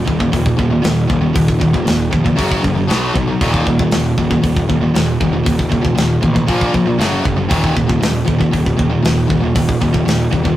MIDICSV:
0, 0, Header, 1, 4, 480
1, 0, Start_track
1, 0, Key_signature, -6, "minor"
1, 0, Tempo, 512383
1, 1277, Time_signature, 4, 2, 24, 8
1, 9898, End_track
2, 0, Start_track
2, 0, Title_t, "Distorted electric guitar"
2, 0, Program_c, 0, 30
2, 58, Note_on_c, 0, 46, 62
2, 67, Note_on_c, 0, 39, 53
2, 179, Note_off_c, 0, 46, 0
2, 183, Note_off_c, 0, 39, 0
2, 190, Note_on_c, 0, 46, 74
2, 194, Note_on_c, 0, 39, 59
2, 293, Note_off_c, 0, 39, 0
2, 297, Note_off_c, 0, 46, 0
2, 304, Note_on_c, 0, 39, 72
2, 308, Note_on_c, 0, 46, 87
2, 520, Note_off_c, 0, 46, 0
2, 521, Note_off_c, 0, 39, 0
2, 532, Note_on_c, 0, 39, 69
2, 532, Note_on_c, 0, 46, 77
2, 650, Note_off_c, 0, 39, 0
2, 650, Note_off_c, 0, 46, 0
2, 661, Note_on_c, 0, 39, 67
2, 661, Note_on_c, 0, 46, 70
2, 757, Note_off_c, 0, 39, 0
2, 764, Note_off_c, 0, 46, 0
2, 769, Note_on_c, 0, 39, 67
2, 775, Note_on_c, 0, 46, 81
2, 999, Note_off_c, 0, 39, 0
2, 1002, Note_off_c, 0, 46, 0
2, 1018, Note_on_c, 0, 39, 56
2, 1018, Note_on_c, 0, 46, 78
2, 1121, Note_off_c, 0, 46, 0
2, 1126, Note_off_c, 0, 39, 0
2, 1132, Note_on_c, 0, 46, 78
2, 1137, Note_on_c, 0, 39, 69
2, 1246, Note_off_c, 0, 46, 0
2, 1248, Note_off_c, 0, 39, 0
2, 1257, Note_on_c, 0, 46, 76
2, 1259, Note_on_c, 0, 39, 74
2, 1478, Note_off_c, 0, 46, 0
2, 1484, Note_off_c, 0, 39, 0
2, 1489, Note_on_c, 0, 46, 73
2, 1496, Note_on_c, 0, 39, 69
2, 1612, Note_off_c, 0, 39, 0
2, 1612, Note_off_c, 0, 46, 0
2, 1623, Note_on_c, 0, 39, 60
2, 1623, Note_on_c, 0, 46, 75
2, 1722, Note_off_c, 0, 39, 0
2, 1725, Note_off_c, 0, 46, 0
2, 1733, Note_on_c, 0, 39, 68
2, 1736, Note_on_c, 0, 46, 70
2, 1961, Note_off_c, 0, 39, 0
2, 1962, Note_off_c, 0, 46, 0
2, 1973, Note_on_c, 0, 46, 62
2, 1979, Note_on_c, 0, 39, 53
2, 2087, Note_off_c, 0, 46, 0
2, 2091, Note_off_c, 0, 39, 0
2, 2099, Note_on_c, 0, 46, 79
2, 2103, Note_on_c, 0, 39, 61
2, 2205, Note_off_c, 0, 39, 0
2, 2209, Note_on_c, 0, 42, 79
2, 2211, Note_off_c, 0, 46, 0
2, 2214, Note_on_c, 0, 49, 83
2, 2219, Note_on_c, 0, 54, 90
2, 2443, Note_off_c, 0, 42, 0
2, 2443, Note_off_c, 0, 49, 0
2, 2453, Note_off_c, 0, 54, 0
2, 2454, Note_on_c, 0, 42, 63
2, 2454, Note_on_c, 0, 49, 70
2, 2563, Note_off_c, 0, 49, 0
2, 2568, Note_off_c, 0, 42, 0
2, 2574, Note_on_c, 0, 49, 73
2, 2579, Note_on_c, 0, 42, 54
2, 2690, Note_off_c, 0, 49, 0
2, 2694, Note_on_c, 0, 47, 84
2, 2696, Note_on_c, 0, 54, 81
2, 2702, Note_on_c, 0, 59, 77
2, 2708, Note_off_c, 0, 42, 0
2, 2929, Note_off_c, 0, 54, 0
2, 2931, Note_off_c, 0, 47, 0
2, 2935, Note_off_c, 0, 59, 0
2, 2940, Note_on_c, 0, 54, 70
2, 2949, Note_on_c, 0, 47, 62
2, 3055, Note_off_c, 0, 54, 0
2, 3058, Note_off_c, 0, 47, 0
2, 3066, Note_on_c, 0, 54, 82
2, 3069, Note_on_c, 0, 47, 62
2, 3191, Note_off_c, 0, 54, 0
2, 3193, Note_off_c, 0, 47, 0
2, 3195, Note_on_c, 0, 39, 80
2, 3200, Note_on_c, 0, 46, 91
2, 3202, Note_on_c, 0, 51, 84
2, 3421, Note_off_c, 0, 39, 0
2, 3424, Note_off_c, 0, 46, 0
2, 3425, Note_off_c, 0, 51, 0
2, 3441, Note_on_c, 0, 46, 80
2, 3446, Note_on_c, 0, 39, 74
2, 3548, Note_off_c, 0, 46, 0
2, 3552, Note_off_c, 0, 39, 0
2, 3559, Note_on_c, 0, 46, 65
2, 3563, Note_on_c, 0, 39, 65
2, 3670, Note_off_c, 0, 39, 0
2, 3678, Note_off_c, 0, 46, 0
2, 3681, Note_on_c, 0, 39, 67
2, 3688, Note_on_c, 0, 46, 77
2, 3895, Note_off_c, 0, 39, 0
2, 3898, Note_off_c, 0, 46, 0
2, 3916, Note_on_c, 0, 46, 64
2, 3923, Note_on_c, 0, 39, 55
2, 4019, Note_off_c, 0, 46, 0
2, 4028, Note_off_c, 0, 39, 0
2, 4030, Note_on_c, 0, 46, 68
2, 4039, Note_on_c, 0, 39, 61
2, 4128, Note_off_c, 0, 39, 0
2, 4133, Note_off_c, 0, 46, 0
2, 4139, Note_on_c, 0, 39, 78
2, 4144, Note_on_c, 0, 46, 82
2, 4364, Note_off_c, 0, 39, 0
2, 4366, Note_off_c, 0, 46, 0
2, 4392, Note_on_c, 0, 46, 78
2, 4393, Note_on_c, 0, 39, 64
2, 4505, Note_off_c, 0, 46, 0
2, 4509, Note_off_c, 0, 39, 0
2, 4516, Note_on_c, 0, 46, 66
2, 4521, Note_on_c, 0, 39, 62
2, 4620, Note_off_c, 0, 46, 0
2, 4621, Note_off_c, 0, 39, 0
2, 4631, Note_on_c, 0, 46, 73
2, 4632, Note_on_c, 0, 39, 72
2, 4850, Note_off_c, 0, 39, 0
2, 4850, Note_off_c, 0, 46, 0
2, 4877, Note_on_c, 0, 46, 77
2, 4878, Note_on_c, 0, 39, 64
2, 4981, Note_off_c, 0, 46, 0
2, 4983, Note_off_c, 0, 39, 0
2, 4992, Note_on_c, 0, 46, 82
2, 4994, Note_on_c, 0, 39, 67
2, 5091, Note_off_c, 0, 39, 0
2, 5097, Note_off_c, 0, 46, 0
2, 5102, Note_on_c, 0, 39, 66
2, 5108, Note_on_c, 0, 46, 74
2, 5325, Note_off_c, 0, 39, 0
2, 5328, Note_off_c, 0, 46, 0
2, 5347, Note_on_c, 0, 39, 62
2, 5347, Note_on_c, 0, 46, 76
2, 5440, Note_off_c, 0, 46, 0
2, 5450, Note_off_c, 0, 39, 0
2, 5451, Note_on_c, 0, 46, 77
2, 5461, Note_on_c, 0, 39, 61
2, 5561, Note_off_c, 0, 39, 0
2, 5561, Note_off_c, 0, 46, 0
2, 5572, Note_on_c, 0, 39, 59
2, 5573, Note_on_c, 0, 46, 66
2, 5800, Note_off_c, 0, 39, 0
2, 5800, Note_off_c, 0, 46, 0
2, 5829, Note_on_c, 0, 46, 65
2, 5830, Note_on_c, 0, 39, 49
2, 5929, Note_off_c, 0, 46, 0
2, 5938, Note_off_c, 0, 39, 0
2, 5940, Note_on_c, 0, 46, 77
2, 5949, Note_on_c, 0, 39, 67
2, 6057, Note_off_c, 0, 46, 0
2, 6068, Note_on_c, 0, 46, 88
2, 6073, Note_off_c, 0, 39, 0
2, 6076, Note_on_c, 0, 53, 88
2, 6079, Note_on_c, 0, 58, 93
2, 6297, Note_off_c, 0, 46, 0
2, 6299, Note_off_c, 0, 53, 0
2, 6303, Note_off_c, 0, 58, 0
2, 6311, Note_on_c, 0, 53, 84
2, 6320, Note_on_c, 0, 46, 75
2, 6424, Note_off_c, 0, 53, 0
2, 6428, Note_off_c, 0, 46, 0
2, 6436, Note_on_c, 0, 53, 75
2, 6439, Note_on_c, 0, 46, 59
2, 6546, Note_on_c, 0, 42, 85
2, 6554, Note_off_c, 0, 46, 0
2, 6556, Note_off_c, 0, 53, 0
2, 6557, Note_on_c, 0, 49, 85
2, 6562, Note_on_c, 0, 54, 86
2, 6774, Note_off_c, 0, 49, 0
2, 6776, Note_off_c, 0, 42, 0
2, 6784, Note_off_c, 0, 54, 0
2, 6785, Note_on_c, 0, 49, 73
2, 6788, Note_on_c, 0, 42, 63
2, 6886, Note_off_c, 0, 49, 0
2, 6890, Note_off_c, 0, 42, 0
2, 6897, Note_on_c, 0, 49, 83
2, 6901, Note_on_c, 0, 42, 70
2, 7010, Note_off_c, 0, 42, 0
2, 7013, Note_on_c, 0, 39, 86
2, 7019, Note_off_c, 0, 49, 0
2, 7023, Note_on_c, 0, 46, 90
2, 7028, Note_on_c, 0, 51, 91
2, 7250, Note_off_c, 0, 39, 0
2, 7250, Note_off_c, 0, 46, 0
2, 7257, Note_off_c, 0, 51, 0
2, 7261, Note_on_c, 0, 46, 85
2, 7266, Note_on_c, 0, 39, 65
2, 7360, Note_off_c, 0, 46, 0
2, 7364, Note_off_c, 0, 39, 0
2, 7371, Note_on_c, 0, 46, 75
2, 7375, Note_on_c, 0, 39, 65
2, 7479, Note_off_c, 0, 39, 0
2, 7484, Note_off_c, 0, 46, 0
2, 7490, Note_on_c, 0, 39, 65
2, 7495, Note_on_c, 0, 46, 71
2, 7715, Note_off_c, 0, 46, 0
2, 7719, Note_off_c, 0, 39, 0
2, 7726, Note_on_c, 0, 46, 68
2, 7731, Note_on_c, 0, 39, 60
2, 7845, Note_off_c, 0, 46, 0
2, 7852, Note_off_c, 0, 39, 0
2, 7857, Note_on_c, 0, 46, 80
2, 7863, Note_on_c, 0, 39, 60
2, 7965, Note_off_c, 0, 39, 0
2, 7966, Note_off_c, 0, 46, 0
2, 7976, Note_on_c, 0, 39, 73
2, 7977, Note_on_c, 0, 46, 79
2, 8201, Note_off_c, 0, 39, 0
2, 8202, Note_off_c, 0, 46, 0
2, 8213, Note_on_c, 0, 46, 82
2, 8220, Note_on_c, 0, 39, 62
2, 8321, Note_off_c, 0, 46, 0
2, 8323, Note_off_c, 0, 39, 0
2, 8332, Note_on_c, 0, 46, 78
2, 8334, Note_on_c, 0, 39, 61
2, 8444, Note_off_c, 0, 39, 0
2, 8445, Note_off_c, 0, 46, 0
2, 8456, Note_on_c, 0, 39, 79
2, 8457, Note_on_c, 0, 46, 80
2, 8675, Note_off_c, 0, 46, 0
2, 8681, Note_off_c, 0, 39, 0
2, 8687, Note_on_c, 0, 46, 74
2, 8692, Note_on_c, 0, 39, 64
2, 8799, Note_off_c, 0, 46, 0
2, 8803, Note_off_c, 0, 39, 0
2, 8810, Note_on_c, 0, 46, 79
2, 8814, Note_on_c, 0, 39, 69
2, 8936, Note_off_c, 0, 39, 0
2, 8942, Note_off_c, 0, 46, 0
2, 8948, Note_on_c, 0, 39, 81
2, 8953, Note_on_c, 0, 46, 83
2, 9167, Note_off_c, 0, 39, 0
2, 9169, Note_off_c, 0, 46, 0
2, 9187, Note_on_c, 0, 46, 77
2, 9191, Note_on_c, 0, 39, 67
2, 9292, Note_off_c, 0, 46, 0
2, 9296, Note_off_c, 0, 39, 0
2, 9303, Note_on_c, 0, 46, 72
2, 9307, Note_on_c, 0, 39, 59
2, 9407, Note_off_c, 0, 39, 0
2, 9414, Note_off_c, 0, 46, 0
2, 9418, Note_on_c, 0, 39, 69
2, 9425, Note_on_c, 0, 46, 66
2, 9642, Note_off_c, 0, 39, 0
2, 9645, Note_off_c, 0, 46, 0
2, 9656, Note_on_c, 0, 46, 69
2, 9663, Note_on_c, 0, 39, 56
2, 9763, Note_off_c, 0, 46, 0
2, 9771, Note_off_c, 0, 39, 0
2, 9775, Note_on_c, 0, 46, 81
2, 9782, Note_on_c, 0, 39, 58
2, 9898, Note_off_c, 0, 39, 0
2, 9898, Note_off_c, 0, 46, 0
2, 9898, End_track
3, 0, Start_track
3, 0, Title_t, "Picked electric bass"
3, 0, Program_c, 1, 34
3, 73, Note_on_c, 1, 27, 75
3, 259, Note_off_c, 1, 27, 0
3, 306, Note_on_c, 1, 27, 77
3, 494, Note_off_c, 1, 27, 0
3, 552, Note_on_c, 1, 27, 85
3, 738, Note_off_c, 1, 27, 0
3, 797, Note_on_c, 1, 27, 84
3, 981, Note_off_c, 1, 27, 0
3, 1029, Note_on_c, 1, 27, 90
3, 1216, Note_off_c, 1, 27, 0
3, 1271, Note_on_c, 1, 27, 100
3, 1457, Note_off_c, 1, 27, 0
3, 1512, Note_on_c, 1, 27, 65
3, 1698, Note_off_c, 1, 27, 0
3, 1769, Note_on_c, 1, 27, 101
3, 1948, Note_off_c, 1, 27, 0
3, 1994, Note_on_c, 1, 29, 73
3, 2179, Note_off_c, 1, 29, 0
3, 2240, Note_on_c, 1, 30, 64
3, 2423, Note_off_c, 1, 30, 0
3, 2482, Note_on_c, 1, 30, 90
3, 2664, Note_off_c, 1, 30, 0
3, 2726, Note_on_c, 1, 35, 98
3, 2907, Note_off_c, 1, 35, 0
3, 2955, Note_on_c, 1, 35, 77
3, 3140, Note_off_c, 1, 35, 0
3, 3201, Note_on_c, 1, 27, 93
3, 3384, Note_off_c, 1, 27, 0
3, 3430, Note_on_c, 1, 27, 76
3, 3617, Note_off_c, 1, 27, 0
3, 3679, Note_on_c, 1, 27, 96
3, 3862, Note_off_c, 1, 27, 0
3, 3917, Note_on_c, 1, 27, 84
3, 4101, Note_off_c, 1, 27, 0
3, 4154, Note_on_c, 1, 27, 65
3, 4339, Note_off_c, 1, 27, 0
3, 4399, Note_on_c, 1, 27, 87
3, 4582, Note_off_c, 1, 27, 0
3, 4635, Note_on_c, 1, 27, 98
3, 4820, Note_off_c, 1, 27, 0
3, 4877, Note_on_c, 1, 27, 92
3, 5061, Note_off_c, 1, 27, 0
3, 5119, Note_on_c, 1, 27, 95
3, 5302, Note_off_c, 1, 27, 0
3, 5354, Note_on_c, 1, 27, 68
3, 5539, Note_off_c, 1, 27, 0
3, 5587, Note_on_c, 1, 27, 98
3, 5775, Note_off_c, 1, 27, 0
3, 5837, Note_on_c, 1, 33, 84
3, 6021, Note_off_c, 1, 33, 0
3, 6073, Note_on_c, 1, 34, 77
3, 6258, Note_off_c, 1, 34, 0
3, 6319, Note_on_c, 1, 34, 77
3, 6502, Note_off_c, 1, 34, 0
3, 6545, Note_on_c, 1, 30, 94
3, 6734, Note_off_c, 1, 30, 0
3, 6793, Note_on_c, 1, 30, 89
3, 6978, Note_off_c, 1, 30, 0
3, 7032, Note_on_c, 1, 27, 102
3, 7218, Note_off_c, 1, 27, 0
3, 7280, Note_on_c, 1, 27, 70
3, 7463, Note_off_c, 1, 27, 0
3, 7503, Note_on_c, 1, 27, 95
3, 7692, Note_off_c, 1, 27, 0
3, 7755, Note_on_c, 1, 27, 80
3, 7939, Note_off_c, 1, 27, 0
3, 8001, Note_on_c, 1, 27, 73
3, 8183, Note_off_c, 1, 27, 0
3, 8234, Note_on_c, 1, 27, 94
3, 8419, Note_off_c, 1, 27, 0
3, 8471, Note_on_c, 1, 27, 91
3, 8656, Note_off_c, 1, 27, 0
3, 8721, Note_on_c, 1, 27, 82
3, 8903, Note_off_c, 1, 27, 0
3, 8956, Note_on_c, 1, 27, 95
3, 9139, Note_off_c, 1, 27, 0
3, 9199, Note_on_c, 1, 27, 76
3, 9381, Note_off_c, 1, 27, 0
3, 9420, Note_on_c, 1, 27, 94
3, 9610, Note_off_c, 1, 27, 0
3, 9679, Note_on_c, 1, 27, 75
3, 9861, Note_off_c, 1, 27, 0
3, 9898, End_track
4, 0, Start_track
4, 0, Title_t, "Drums"
4, 71, Note_on_c, 9, 36, 76
4, 164, Note_off_c, 9, 36, 0
4, 189, Note_on_c, 9, 36, 80
4, 283, Note_off_c, 9, 36, 0
4, 311, Note_on_c, 9, 36, 80
4, 315, Note_on_c, 9, 46, 44
4, 405, Note_off_c, 9, 36, 0
4, 409, Note_off_c, 9, 46, 0
4, 429, Note_on_c, 9, 36, 89
4, 523, Note_off_c, 9, 36, 0
4, 551, Note_on_c, 9, 36, 85
4, 645, Note_off_c, 9, 36, 0
4, 788, Note_on_c, 9, 46, 45
4, 796, Note_on_c, 9, 38, 102
4, 882, Note_off_c, 9, 46, 0
4, 890, Note_off_c, 9, 38, 0
4, 1029, Note_on_c, 9, 36, 81
4, 1123, Note_off_c, 9, 36, 0
4, 1271, Note_on_c, 9, 36, 118
4, 1272, Note_on_c, 9, 46, 58
4, 1364, Note_off_c, 9, 36, 0
4, 1366, Note_off_c, 9, 46, 0
4, 1389, Note_on_c, 9, 36, 86
4, 1483, Note_off_c, 9, 36, 0
4, 1511, Note_on_c, 9, 36, 75
4, 1605, Note_off_c, 9, 36, 0
4, 1632, Note_on_c, 9, 36, 81
4, 1725, Note_off_c, 9, 36, 0
4, 1752, Note_on_c, 9, 46, 52
4, 1760, Note_on_c, 9, 38, 90
4, 1846, Note_off_c, 9, 46, 0
4, 1854, Note_off_c, 9, 38, 0
4, 1993, Note_on_c, 9, 36, 80
4, 2086, Note_off_c, 9, 36, 0
4, 2115, Note_on_c, 9, 36, 73
4, 2209, Note_off_c, 9, 36, 0
4, 2235, Note_on_c, 9, 36, 86
4, 2239, Note_on_c, 9, 46, 58
4, 2329, Note_off_c, 9, 36, 0
4, 2332, Note_off_c, 9, 46, 0
4, 2357, Note_on_c, 9, 36, 88
4, 2450, Note_off_c, 9, 36, 0
4, 2476, Note_on_c, 9, 36, 83
4, 2570, Note_off_c, 9, 36, 0
4, 2719, Note_on_c, 9, 46, 50
4, 2727, Note_on_c, 9, 38, 89
4, 2812, Note_off_c, 9, 46, 0
4, 2821, Note_off_c, 9, 38, 0
4, 2956, Note_on_c, 9, 36, 74
4, 3050, Note_off_c, 9, 36, 0
4, 3196, Note_on_c, 9, 36, 113
4, 3199, Note_on_c, 9, 46, 56
4, 3289, Note_off_c, 9, 36, 0
4, 3292, Note_off_c, 9, 46, 0
4, 3315, Note_on_c, 9, 36, 81
4, 3409, Note_off_c, 9, 36, 0
4, 3436, Note_on_c, 9, 36, 75
4, 3529, Note_off_c, 9, 36, 0
4, 3554, Note_on_c, 9, 36, 82
4, 3647, Note_off_c, 9, 36, 0
4, 3667, Note_on_c, 9, 46, 52
4, 3676, Note_on_c, 9, 38, 101
4, 3761, Note_off_c, 9, 46, 0
4, 3769, Note_off_c, 9, 38, 0
4, 3914, Note_on_c, 9, 36, 70
4, 4008, Note_off_c, 9, 36, 0
4, 4035, Note_on_c, 9, 36, 81
4, 4129, Note_off_c, 9, 36, 0
4, 4155, Note_on_c, 9, 46, 45
4, 4156, Note_on_c, 9, 36, 79
4, 4249, Note_off_c, 9, 46, 0
4, 4250, Note_off_c, 9, 36, 0
4, 4277, Note_on_c, 9, 36, 88
4, 4370, Note_off_c, 9, 36, 0
4, 4399, Note_on_c, 9, 36, 75
4, 4493, Note_off_c, 9, 36, 0
4, 4641, Note_on_c, 9, 46, 46
4, 4650, Note_on_c, 9, 38, 100
4, 4735, Note_off_c, 9, 46, 0
4, 4744, Note_off_c, 9, 38, 0
4, 4879, Note_on_c, 9, 36, 77
4, 4973, Note_off_c, 9, 36, 0
4, 5118, Note_on_c, 9, 36, 115
4, 5124, Note_on_c, 9, 46, 63
4, 5212, Note_off_c, 9, 36, 0
4, 5218, Note_off_c, 9, 46, 0
4, 5238, Note_on_c, 9, 36, 81
4, 5332, Note_off_c, 9, 36, 0
4, 5357, Note_on_c, 9, 36, 78
4, 5450, Note_off_c, 9, 36, 0
4, 5477, Note_on_c, 9, 36, 72
4, 5570, Note_off_c, 9, 36, 0
4, 5599, Note_on_c, 9, 46, 49
4, 5607, Note_on_c, 9, 38, 101
4, 5692, Note_off_c, 9, 46, 0
4, 5701, Note_off_c, 9, 38, 0
4, 5835, Note_on_c, 9, 36, 77
4, 5928, Note_off_c, 9, 36, 0
4, 5957, Note_on_c, 9, 36, 83
4, 6050, Note_off_c, 9, 36, 0
4, 6075, Note_on_c, 9, 36, 92
4, 6075, Note_on_c, 9, 46, 49
4, 6169, Note_off_c, 9, 36, 0
4, 6169, Note_off_c, 9, 46, 0
4, 6196, Note_on_c, 9, 36, 84
4, 6289, Note_off_c, 9, 36, 0
4, 6316, Note_on_c, 9, 36, 79
4, 6410, Note_off_c, 9, 36, 0
4, 6564, Note_on_c, 9, 46, 57
4, 6572, Note_on_c, 9, 38, 99
4, 6658, Note_off_c, 9, 46, 0
4, 6666, Note_off_c, 9, 38, 0
4, 6795, Note_on_c, 9, 36, 83
4, 6889, Note_off_c, 9, 36, 0
4, 7034, Note_on_c, 9, 36, 121
4, 7038, Note_on_c, 9, 46, 57
4, 7128, Note_off_c, 9, 36, 0
4, 7132, Note_off_c, 9, 46, 0
4, 7155, Note_on_c, 9, 36, 82
4, 7249, Note_off_c, 9, 36, 0
4, 7275, Note_on_c, 9, 36, 83
4, 7369, Note_off_c, 9, 36, 0
4, 7396, Note_on_c, 9, 36, 91
4, 7489, Note_off_c, 9, 36, 0
4, 7519, Note_on_c, 9, 46, 52
4, 7527, Note_on_c, 9, 38, 93
4, 7612, Note_off_c, 9, 46, 0
4, 7621, Note_off_c, 9, 38, 0
4, 7755, Note_on_c, 9, 36, 82
4, 7848, Note_off_c, 9, 36, 0
4, 7875, Note_on_c, 9, 36, 75
4, 7969, Note_off_c, 9, 36, 0
4, 7995, Note_on_c, 9, 36, 79
4, 7997, Note_on_c, 9, 46, 46
4, 8088, Note_off_c, 9, 36, 0
4, 8090, Note_off_c, 9, 46, 0
4, 8116, Note_on_c, 9, 36, 87
4, 8210, Note_off_c, 9, 36, 0
4, 8235, Note_on_c, 9, 36, 82
4, 8329, Note_off_c, 9, 36, 0
4, 8476, Note_on_c, 9, 46, 48
4, 8484, Note_on_c, 9, 38, 105
4, 8570, Note_off_c, 9, 46, 0
4, 8578, Note_off_c, 9, 38, 0
4, 8714, Note_on_c, 9, 36, 77
4, 8807, Note_off_c, 9, 36, 0
4, 8952, Note_on_c, 9, 46, 62
4, 8953, Note_on_c, 9, 36, 108
4, 9046, Note_off_c, 9, 46, 0
4, 9047, Note_off_c, 9, 36, 0
4, 9075, Note_on_c, 9, 36, 87
4, 9169, Note_off_c, 9, 36, 0
4, 9196, Note_on_c, 9, 36, 79
4, 9289, Note_off_c, 9, 36, 0
4, 9315, Note_on_c, 9, 36, 79
4, 9409, Note_off_c, 9, 36, 0
4, 9443, Note_on_c, 9, 46, 54
4, 9451, Note_on_c, 9, 38, 107
4, 9536, Note_off_c, 9, 46, 0
4, 9545, Note_off_c, 9, 38, 0
4, 9674, Note_on_c, 9, 36, 75
4, 9767, Note_off_c, 9, 36, 0
4, 9791, Note_on_c, 9, 36, 80
4, 9885, Note_off_c, 9, 36, 0
4, 9898, End_track
0, 0, End_of_file